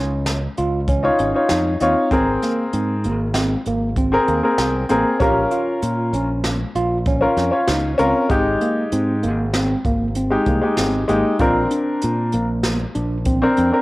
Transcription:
0.00 0.46 C#2 medium
0.00 0.39 C#4 medium
0.26 snare loud
0.26 closed hi-hat medium
0.57 1.08 C#2 medium
0.57 0.79 F4 medium
0.57 closed hi-hat medium
0.88 1.10 C#4 medium
0.88 kick loud
0.88 closed hi-hat medium
1.03 1.30 D#4 medium
1.03 1.30 F4 medium
1.03 1.31 C#5 medium
1.19 1.32 G#1 medium
1.19 1.41 C#4 medium
1.19 closed hi-hat medium
1.34 1.74 D#4 medium
1.34 1.74 F4 medium
1.34 1.75 C#5 medium
1.49 1.76 F2 medium
1.49 1.72 D#4 medium
1.49 snare loud
1.49 closed hi-hat medium
1.80 1.94 D#2 medium
1.80 2.24 C4 medium
1.80 2.07 D#4 medium
1.80 2.08 F4 medium
1.80 2.08 C#5 medium
1.80 closed hi-hat medium
2.11 2.36 G#1 medium
2.11 3.16 C4 medium
2.11 3.17 G#4 medium
2.11 3.17 A#4 medium
2.11 kick loud
2.11 closed hi-hat medium
2.42 2.64 A#3 medium
2.42 snare soft
2.42 closed hi-hat medium
2.73 3.07 G#2 medium
2.73 2.95 C4 medium
2.73 closed hi-hat medium
3.04 3.55 G#1 medium
3.04 3.26 A#3 medium
3.04 closed hi-hat soft
3.34 3.57 C4 medium
3.34 snare loud
3.34 closed hi-hat medium
3.66 4.16 G#1 medium
3.66 3.88 A#3 medium
3.66 closed hi-hat medium
3.96 4.19 C4 medium
3.96 kick medium
3.96 closed hi-hat medium
4.12 4.38 C4 medium
4.12 4.39 G#4 medium
4.12 4.39 A#4 medium
4.28 4.41 D#2 medium
4.28 4.50 A#3 medium
4.28 closed hi-hat soft
4.43 4.83 C4 medium
4.43 4.83 G#4 medium
4.43 4.83 A#4 medium
4.58 4.83 C2 medium
4.58 4.81 C4 medium
4.58 snare loud
4.58 closed hi-hat medium
4.89 5.03 A1 medium
4.89 5.11 A#3 medium
4.89 5.16 C4 medium
4.89 5.16 G#4 medium
4.89 5.17 A#4 medium
4.89 closed hi-hat medium
5.20 5.45 A#1 medium
5.20 6.25 C#4 medium
5.20 6.26 F4 medium
5.20 5.42 G4 medium
5.20 6.26 A#4 medium
5.20 kick loud
5.20 closed hi-hat medium
5.51 5.94 F4 medium
5.51 closed hi-hat medium
5.82 6.14 A#2 medium
5.82 closed hi-hat medium
6.13 6.63 A#1 medium
6.13 6.57 C#4 medium
6.13 closed hi-hat medium
6.44 snare loud
6.44 closed hi-hat medium
6.75 7.25 A#1 medium
6.75 6.97 F4 medium
6.75 closed hi-hat medium
7.06 7.28 C#4 medium
7.06 kick loud
7.06 closed hi-hat medium
7.21 7.48 C#4 medium
7.21 7.48 F4 medium
7.21 7.48 A#4 medium
7.37 7.49 F2 medium
7.37 7.60 C#4 medium
7.37 snare soft
7.37 closed hi-hat medium
7.51 7.91 C#4 medium
7.51 7.92 F4 medium
7.51 7.92 C#5 medium
7.68 7.93 C#2 medium
7.68 7.91 D#4 medium
7.68 snare loud
7.68 closed hi-hat medium
7.98 8.12 C#2 loud
7.98 8.43 C4 medium
7.98 8.25 C#4 medium
7.98 8.25 F4 medium
7.98 8.26 A#4 medium
7.98 closed hi-hat medium
8.29 8.55 G#1 medium
8.29 9.35 G#3 medium
8.29 9.35 D#4 medium
8.29 9.36 G4 medium
8.29 kick loud
8.29 closed hi-hat medium
8.61 8.83 A#3 medium
8.61 closed hi-hat medium
8.92 9.25 G#2 medium
8.92 9.14 C4 medium
8.92 closed hi-hat medium
9.23 9.74 G#1 medium
9.23 9.45 A#3 medium
9.23 closed hi-hat medium
9.54 9.76 C4 medium
9.54 snare loud
9.54 closed hi-hat medium
9.85 10.35 G#1 medium
9.85 10.07 A#3 medium
9.85 kick medium
9.85 closed hi-hat medium
10.15 10.38 C4 medium
10.15 closed hi-hat medium
10.30 10.58 G#3 medium
10.30 10.58 D#4 medium
10.30 10.58 G4 medium
10.46 10.59 C2 medium
10.46 10.69 A#3 medium
10.46 kick medium
10.46 closed hi-hat medium
10.61 11.02 G#3 medium
10.61 11.02 D#4 medium
10.61 11.03 G4 medium
10.77 11.04 G#1 medium
10.77 11.00 C4 medium
10.77 snare loud
10.77 closed hi-hat medium
11.08 11.22 G#1 medium
11.08 11.35 G#3 medium
11.08 11.31 A#3 medium
11.08 11.36 D#4 medium
11.08 11.36 G4 medium
11.08 closed hi-hat medium
11.39 11.65 A#1 medium
11.39 12.46 C4 medium
11.39 12.46 D4 medium
11.39 11.61 F4 medium
11.39 12.46 A#4 medium
11.39 kick loud
11.39 closed hi-hat medium
11.71 12.14 D4 medium
11.71 closed hi-hat medium
12.02 12.35 A#2 medium
12.02 closed hi-hat medium
12.32 12.84 A#1 medium
12.32 12.77 A#3 medium
12.32 closed hi-hat medium
12.63 snare loud
12.63 closed hi-hat medium
12.95 13.46 A#1 medium
12.95 13.17 D4 medium
12.95 closed hi-hat medium
13.25 13.48 C4 medium
13.25 kick loud
13.25 closed hi-hat medium
13.42 13.68 C4 medium
13.42 13.69 D4 medium
13.42 13.69 A#4 medium
13.57 13.71 F2 medium
13.57 13.79 C4 medium
13.57 closed hi-hat medium
13.71 13.82 C4 medium
13.71 13.82 D4 medium
13.71 13.82 A#4 medium

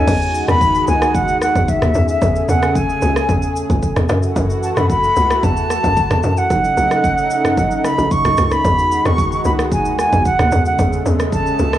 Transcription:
0.00 0.48 G#5 loud
0.07 0.42 E2 loud
0.07 1.93 D#3 medium
0.07 1.93 G#3 medium
0.07 1.93 F#4 loud
0.07 kick loud
0.07 crash loud
0.07 shaker medium
0.22 shaker medium
0.35 shaker medium
0.48 0.82 E2 loud
0.48 0.85 B5 loud
0.48 cross-stick medium
0.48 shaker medium
0.61 kick loud
0.61 shaker medium
0.75 shaker soft
0.88 1.16 C#2 medium
0.88 1.17 G#5 loud
0.88 shaker medium
1.02 cross-stick loud
1.02 shaker soft
1.15 1.49 D#2 medium
1.15 1.41 F#5 loud
1.15 kick loud
1.15 shaker medium
1.28 shaker medium
1.42 1.70 F#5 loud
1.42 cross-stick medium
1.42 shaker loud
1.56 1.66 E2 medium
1.56 kick loud
1.56 shaker medium
1.68 2.09 E5 loud
1.68 kick medium
1.68 shaker medium
1.82 1.93 D#2 medium
1.82 cross-stick loud
1.82 mid tom loud
1.82 shaker medium
1.94 2.18 E2 loud
1.94 4.07 C#3 medium
1.94 4.07 A3 medium
1.94 4.07 G#4 loud
1.94 shaker medium
2.08 2.51 E5 medium
2.08 shaker medium
2.22 2.45 E2 loud
2.22 kick loud
2.22 shaker medium
2.36 shaker medium
2.49 2.94 E2 loud
2.49 2.78 F#5 medium
2.49 shaker medium
2.63 cross-stick medium
2.63 shaker medium
2.75 3.56 G#5 medium
2.75 kick loud
2.75 shaker medium
2.89 shaker soft
3.02 3.25 C#2 loud
3.02 shaker medium
3.16 cross-stick loud
3.16 shaker soft
3.29 3.64 E2 medium
3.29 kick loud
3.29 shaker medium
3.42 shaker medium
3.56 shaker loud
3.70 3.81 C#2 medium
3.70 kick loud
3.70 shaker medium
3.83 kick medium
3.83 shaker medium
3.96 4.07 E2 loud
3.96 cross-stick loud
3.96 mid tom medium
3.96 shaker medium
4.09 4.32 F#2 loud
4.09 6.48 E3 medium
4.09 6.48 A3 medium
4.09 6.48 F#4 medium
4.09 cross-stick loud
4.09 shaker medium
4.23 shaker medium
4.36 4.71 F#2 loud
4.36 kick loud
4.36 shaker medium
4.50 shaker medium
4.63 4.73 A5 medium
4.63 shaker medium
4.74 5.11 F#2 loud
4.74 4.90 B5 medium
4.74 4.79 C#6 medium
4.74 cross-stick medium
4.74 shaker medium
4.90 5.45 B5 loud
4.90 kick loud
4.90 shaker medium
5.04 shaker soft
5.16 5.39 C#2 medium
5.16 shaker medium
5.31 cross-stick loud
5.31 shaker soft
5.43 5.78 E2 medium
5.43 6.40 A5 loud
5.43 kick loud
5.43 shaker medium
5.57 shaker medium
5.70 cross-stick medium
5.70 shaker loud
5.84 5.95 F#2 medium
5.84 kick loud
5.84 shaker medium
5.97 kick medium
5.97 shaker medium
6.11 6.22 E2 medium
6.11 cross-stick loud
6.11 mid tom loud
6.11 shaker medium
6.23 6.46 F#2 loud
6.23 shaker medium
6.37 7.86 F#5 loud
6.37 shaker medium
6.50 6.73 B1 loud
6.50 8.63 C#3 medium
6.50 8.63 A3 medium
6.50 8.63 D#4 loud
6.50 kick loud
6.50 shaker medium
6.64 shaker medium
6.77 7.32 B1 loud
6.77 shaker medium
6.91 cross-stick medium
6.91 shaker medium
7.04 kick loud
7.04 shaker medium
7.18 shaker soft
7.30 7.54 A1 medium
7.30 shaker medium
7.45 cross-stick loud
7.45 mid tom medium
7.45 shaker soft
7.57 7.92 B1 medium
7.57 kick loud
7.57 shaker medium
7.71 shaker medium
7.84 8.13 B5 loud
7.84 cross-stick medium
7.84 shaker loud
7.98 8.09 A1 loud
7.98 shaker medium
8.11 8.54 C#6 loud
8.11 kick loud
8.11 shaker medium
8.25 8.36 B1 medium
8.25 cross-stick loud
8.25 mid tom loud
8.25 shaker medium
8.37 8.61 C#2 loud
8.37 cross-stick loud
8.37 shaker medium
8.51 9.07 B5 loud
8.51 cross-stick medium
8.51 shaker medium
8.65 8.99 E2 loud
8.65 10.50 D#3 medium
8.65 10.50 G#3 medium
8.65 10.50 F#4 medium
8.65 kick loud
8.65 shaker medium
8.79 shaker medium
8.92 shaker medium
9.05 9.39 E2 loud
9.05 9.45 C#6 loud
9.05 cross-stick medium
9.05 shaker soft
9.18 kick loud
9.18 shaker medium
9.32 shaker soft
9.45 9.73 C#2 medium
9.45 9.51 B5 loud
9.45 shaker medium
9.59 cross-stick loud
9.59 shaker soft
9.72 10.07 D#2 loud
9.72 9.97 G#5 loud
9.72 kick loud
9.72 shaker medium
9.85 shaker medium
9.99 10.24 G#5 medium
9.99 cross-stick medium
9.99 shaker loud
10.13 10.24 E2 medium
10.13 kick loud
10.13 shaker medium
10.25 10.64 F#5 medium
10.25 kick loud
10.25 shaker medium
10.39 10.50 D#2 medium
10.39 cross-stick loud
10.39 mid tom loud
10.39 shaker medium
10.52 10.75 E2 loud
10.52 11.78 C#3 medium
10.52 11.78 G#3 loud
10.52 11.78 A3 medium
10.52 shaker medium
10.66 11.03 F#5 medium
10.66 shaker medium
10.79 11.02 E2 loud
10.79 kick loud
10.79 shaker medium
10.93 shaker medium
11.06 11.51 E2 loud
11.06 shaker medium
11.20 cross-stick medium
11.20 shaker soft
11.32 11.78 A5 loud
11.32 kick loud
11.32 shaker medium
11.46 shaker soft
11.59 11.78 C#2 loud
11.59 shaker medium
11.73 cross-stick loud
11.73 shaker soft

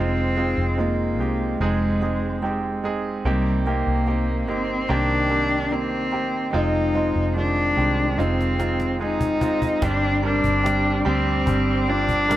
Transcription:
0.00 0.54 F1 medium
0.00 0.35 G#3 medium
0.00 0.35 C4 medium
0.00 0.81 C4 medium
0.00 0.35 D#4 medium
0.00 0.36 F4 medium
0.37 0.76 G#3 medium
0.37 0.76 C4 medium
0.37 0.77 D#4 medium
0.37 0.77 F4 medium
0.58 1.19 F1 medium
0.78 1.17 G#3 medium
0.78 1.61 A#3 medium
0.78 1.17 C4 soft
0.78 1.17 D#4 medium
0.78 1.18 F4 medium
1.19 1.58 C2 medium
1.19 1.59 G#3 medium
1.19 1.59 C4 medium
1.19 1.59 D#4 soft
1.19 1.59 G4 medium
1.60 3.21 F1 medium
1.60 2.00 G#3 medium
1.60 2.81 G#3 medium
1.60 2.00 C4 medium
1.60 2.00 D#4 medium
1.60 2.00 G#4 medium
2.02 2.41 G#3 medium
2.02 2.41 C4 medium
2.02 2.41 D#4 medium
2.02 2.42 G#4 medium
2.42 2.82 G#3 medium
2.42 2.82 C4 medium
2.42 2.82 D#4 medium
2.42 2.82 G4 medium
2.84 3.23 G#3 medium
2.84 3.23 C4 medium
2.84 3.23 D#4 medium
2.84 3.24 G#4 medium
3.25 3.83 C2 medium
3.25 4.45 C3 soft
3.25 3.64 G3 medium
3.25 3.64 A#3 medium
3.25 3.64 C4 medium
3.25 3.65 D#4 medium
3.25 3.65 G4 medium
3.67 4.05 A#3 medium
3.67 4.51 A#3 medium
3.67 4.06 C4 medium
3.67 4.06 D#4 medium
3.67 4.06 G4 medium
3.87 4.48 C2 medium
4.07 4.46 A#3 medium
4.07 4.46 C4 medium
4.07 4.47 D#4 medium
4.07 4.47 G4 medium
4.48 4.86 G1 medium
4.48 4.87 A#3 medium
4.48 4.88 C4 medium
4.48 4.91 C4 medium
4.48 4.88 D#4 medium
4.48 4.88 G4 medium
4.89 6.50 C2 medium
4.89 5.29 D#3 medium
4.89 5.28 A#3 medium
4.89 5.28 C4 medium
4.89 5.74 D4 medium
4.89 5.29 G4 medium
5.30 5.70 D#3 soft
5.30 5.69 A#3 medium
5.30 5.70 C4 medium
5.30 5.70 G4 medium
5.71 6.10 A#3 medium
5.71 6.11 C4 medium
5.71 6.53 C4 medium
5.71 6.11 D#4 soft
5.71 6.11 G4 medium
6.12 6.51 A#3 medium
6.12 6.52 C4 soft
6.12 6.52 D#4 soft
6.12 6.52 G4 medium
6.53 7.12 F1 medium
6.53 6.92 G#3 medium
6.53 6.93 C4 medium
6.53 6.93 D#4 medium
6.53 7.32 D#4 medium
6.53 6.93 F4 medium
6.94 7.34 G#3 medium
6.94 7.34 C4 medium
6.94 7.34 D#4 medium
6.94 7.34 F4 medium
7.16 7.73 F1 medium
7.36 7.76 D#3 soft
7.36 7.75 G#3 medium
7.36 7.75 C4 medium
7.36 8.21 D4 medium
7.36 7.76 F4 medium
7.76 8.15 C2 medium
7.76 8.16 D#3 medium
7.76 8.16 G#3 medium
7.76 8.16 C4 medium
7.76 8.16 G4 medium
8.17 9.79 F1 medium
8.17 8.57 G#3 medium
8.17 8.57 C4 medium
8.17 9.01 C4 medium
8.17 8.57 D#4 medium
8.17 8.58 F4 medium
8.17 cajon slap soft
8.41 cajon slap soft
8.59 8.98 G#3 medium
8.59 8.98 C4 medium
8.59 8.99 D#4 medium
8.59 8.99 F4 medium
8.59 cajon slap medium
8.80 cajon slap medium
9.00 9.39 G#3 medium
9.00 9.39 C4 medium
9.00 9.40 D#4 soft
9.00 9.85 D#4 medium
9.00 9.40 G#4 medium
9.21 cajon bass medium
9.41 9.80 G#3 medium
9.41 9.80 C4 medium
9.41 9.81 D#4 medium
9.41 9.81 F4 medium
9.41 cajon bass medium
9.62 cajon bass medium
9.82 10.40 G1 medium
9.82 11.02 G2 soft
9.82 10.22 G3 medium
9.82 10.21 C4 medium
9.82 10.22 D4 medium
9.82 10.23 D4 medium
9.82 10.22 G4 medium
9.82 12.37 G4 medium
9.82 12.37 D5 soft
9.82 12.37 C6 medium
9.82 12.37 D6 medium
9.82 cajon bass medium
10.23 10.62 G3 medium
10.23 10.62 C4 medium
10.23 11.02 D4 medium
10.23 10.63 D4 medium
10.23 10.63 A#4 medium
10.44 11.02 G1 medium
10.44 cajon bass medium
10.63 11.03 G3 medium
10.63 11.03 C4 medium
10.63 11.04 D4 medium
10.63 11.04 G4 medium
10.63 cajon slap medium
11.05 11.44 D2 medium
11.05 11.44 G3 medium
11.05 11.45 C4 medium
11.05 11.90 C4 medium
11.05 11.45 D4 medium
11.05 11.45 G4 medium
11.46 12.37 G1 medium
11.46 11.86 G3 medium
11.46 11.86 C4 medium
11.46 11.86 D4 medium
11.46 11.86 G4 medium
11.46 cajon bass medium
11.88 12.27 G3 medium
11.88 12.27 C4 medium
11.88 12.27 D4 medium
11.88 12.37 D4 loud
11.88 12.27 F4 medium
12.09 cajon bass medium
12.29 12.37 G3 medium
12.29 12.37 C4 medium
12.29 12.37 D4 medium
12.29 12.37 A#4 medium
12.29 cajon slap medium

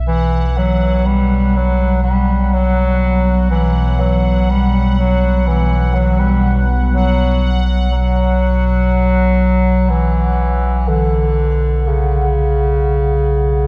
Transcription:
0.00 13.67 B1 medium
0.00 0.10 E5 medium
0.07 0.59 E3 loud
0.07 13.67 F#5 medium
0.58 1.08 F#3 loud
1.06 1.59 G3 loud
1.57 2.03 F#3 loud
2.03 2.55 G3 medium
2.54 3.50 F#3 loud
3.51 4.01 E3 medium
4.00 4.52 F#3 loud
4.51 4.99 G3 loud
4.99 5.49 F#3 loud
5.47 5.96 E3 medium
5.95 6.21 F#3 medium
6.20 6.68 G3 medium
6.93 7.65 F#3 medium
7.91 9.91 F#3 loud
9.90 10.90 E3 medium
10.89 11.89 D3 medium
11.87 13.67 C#3 medium

